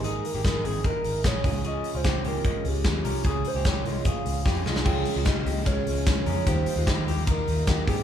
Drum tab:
CC |----------------|----------------|----------------|x---------------|
RD |----------------|----------------|----------------|----x---x---x---|
HH |x-o-x-o-x-o-x-o-|x-o-x-o-x-o-x-o-|x-o-x-o-x-o-----|--o-p-o-p-o-p-o-|
SD |----o-------o---|----o-------o---|----o-------o-oo|----o-------o---|
BD |----o---o---o-o-|----o---o---o---|o---o---o---o---|o---o---o---o---|

CC |----------------|
RD |x---x---x---x---|
HH |p-o-p-o-p-o-p-o-|
SD |----o-------o---|
BD |o---o---o---o-o-|